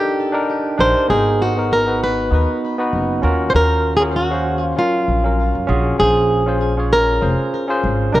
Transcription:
Already playing: tine electric piano D4 D#4 G4 A#4, nylon-string guitar G4
0.32 tine electric piano D4 D#4 G4 A#4
0.78 upright bass A#1, tine electric piano D4 D#4 G4 A#4, nylon-string guitar C5
1.08 upright bass G#1, tine electric piano B3 D#4 F#4 A#4, nylon-string guitar G#4
1.42 nylon-string guitar F#4
1.56 tine electric piano B3 D#4 F#4 A#4
1.73 nylon-string guitar A#4
1.86 tine electric piano B3 D#4 F#4 B4
2.04 nylon-string guitar B4
2.31 upright bass D#2, tine electric piano B3 D#4 F#4 B4
2.78 tine electric piano B3 D#4 F#4 B4
2.93 upright bass F#1
3.22 upright bass D#2, tine electric piano C#4 F4 F#4 A#4
3.50 tine electric piano C#4 F4, nylon-string guitar C5
3.54 upright bass D#2, tine electric piano F#4 A#4, nylon-string guitar A#4
3.97 tine electric piano C#4 F4, nylon-string guitar G#4
4.01 tine electric piano F#4 A#4
4.16 nylon-string guitar F#4
4.31 tine electric piano C#4 F#4 C5 F5
4.61 nylon-string guitar F4
4.77 tine electric piano F#3 C#4 F4 A#4, nylon-string guitar F4
5.08 upright bass A#1
5.24 tine electric piano F#3 C#4 F4 A#4
5.55 upright bass F#2
5.67 upright bass A#1, tine electric piano C#4 F4 F#4 G#4
5.98 upright bass A#1, tine electric piano C#4 F4 G#4 C5, nylon-string guitar G#4
6.46 tine electric piano C#4 F4 G#4 C5
6.77 tine electric piano C#4 F4 G#4 C#5
6.93 nylon-string guitar A#4
7.21 upright bass F1, tine electric piano C#4 F4 G#4 C5
7.68 tine electric piano C#4 F4 G#4 C5
7.84 upright bass G#1
8.12 upright bass C2, tine electric piano D4 D#4 G4 A#4, nylon-string guitar A#4

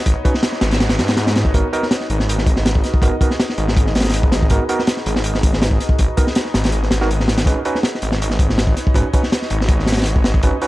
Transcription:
0.06 detuned saw bass G#1, kick, closed hi-hat, noise sweep
0.25 tine electric piano C#4 D#4 F#4 B4, kick, closed hi-hat
0.34 snare
0.43 snare, closed hi-hat
0.52 snare
0.61 detuned saw bass G#1, ambient pad D#4 F#4 B4 C#5 D#5, snare, closed hi-hat
0.71 snare, closed hi-hat
0.80 snare, closed hi-hat
0.89 snare, closed hi-hat
0.99 detuned saw bass G#2, snare, closed hi-hat
1.08 snare, closed hi-hat
1.17 snare, closed hi-hat
1.27 snare, closed hi-hat
1.36 snare, closed hi-hat
1.45 detuned saw bass F#1, kick
1.54 detuned saw bass G#1, tine electric piano B3 D#4 F#4 A#4, kick, closed hi-hat
1.73 tine electric piano B3 D#4 F#4 A#4, closed hi-hat
1.83 snare
1.91 snare, closed hi-hat
2.01 snare
2.10 detuned saw bass G#1, ambient pad D#4 F#4 G#4 B4 D#5, closed hi-hat
2.20 snare
2.29 closed hi-hat
2.38 snare
2.47 kick, closed hi-hat
2.56 snare
2.66 snare, closed hi-hat
2.75 kick
2.84 snare, closed hi-hat
2.94 kick
3.02 detuned saw bass G#1, tine electric piano B3 D#4 F#4 A#4, kick, closed hi-hat
3.21 tine electric piano B3 D#4 F#4 A#4, kick, closed hi-hat
3.31 snare
3.40 snare, closed hi-hat
3.49 snare
3.58 detuned saw bass G#1, ambient pad D#4 F#4 G#4 B4 D#5, closed hi-hat
3.68 snare
3.77 kick, closed hi-hat
3.87 snare
3.95 detuned saw bass G#1, snare, closed hi-hat
4.00 snare, closed hi-hat
4.04 snare, closed hi-hat
4.09 snare, closed hi-hat
4.14 closed hi-hat
4.23 kick
4.32 snare, closed hi-hat
4.42 kick
4.50 detuned saw bass G#1, tine electric piano B3 D#4 F#4 A#4, kick, closed hi-hat
4.69 tine electric piano B3 D#4 F#4 A#4, closed hi-hat
4.79 snare
4.87 snare, closed hi-hat
4.97 snare
5.06 detuned saw bass G#1, ambient pad D#4 F#4 G#4 B4 D#5, closed hi-hat
5.16 snare
5.24 closed hi-hat
5.35 snare
5.43 kick, closed hi-hat
5.53 snare
5.62 snare, closed hi-hat
5.71 kick
5.80 snare, closed hi-hat
5.89 kick
5.99 detuned saw bass G#1, kick, closed hi-hat
6.17 tine electric piano B3 D#4 F#4 A#4, kick, closed hi-hat
6.27 snare
6.35 snare, closed hi-hat
6.45 snare
6.54 detuned saw bass G#1, ambient pad D#4 F#4 G#4 B4 D#5, snare, closed hi-hat
6.64 snare, closed hi-hat
6.72 closed hi-hat
6.83 snare
6.91 detuned saw bass G#1, snare, closed hi-hat
7.01 tine electric piano B3 D#4 F#4 A#4, snare
7.11 closed hi-hat
7.20 snare
7.28 snare, closed hi-hat
7.38 snare, closed hi-hat
7.46 detuned saw bass G#1, tine electric piano C#4 D#4 F#4 B4, kick, closed hi-hat
7.65 tine electric piano C#4 D#4 F#4 B4, closed hi-hat
7.75 snare
7.83 snare, closed hi-hat
7.95 snare
8.02 detuned saw bass G#1, ambient pad D#4 F#4 B4 C#5 D#5, closed hi-hat
8.12 snare
8.22 closed hi-hat
8.30 snare
8.39 kick, closed hi-hat
8.50 snare
8.58 snare, closed hi-hat
8.67 kick
8.77 snare, closed hi-hat
8.87 kick
8.94 detuned saw bass G#1, tine electric piano C#4 D#4 F#4 B4, kick, closed hi-hat
9.13 tine electric piano C#4 D#4 F#4 B4, kick, closed hi-hat
9.23 snare
9.32 snare, closed hi-hat
9.42 snare
9.50 detuned saw bass G#1, ambient pad D#4 F#4 B4 C#5 D#5, closed hi-hat
9.61 snare
9.68 kick, closed hi-hat
9.80 snare
9.86 detuned saw bass G#1, snare, closed hi-hat
9.92 snare, closed hi-hat
9.97 snare, closed hi-hat
10.02 snare, closed hi-hat
10.06 closed hi-hat
10.16 kick
10.24 snare, closed hi-hat
10.34 kick
10.43 detuned saw bass G#1, tine electric piano C#4 D#4 F#4 B4, kick, closed hi-hat
10.62 tine electric piano C#4 D#4 F#4 B4, closed hi-hat

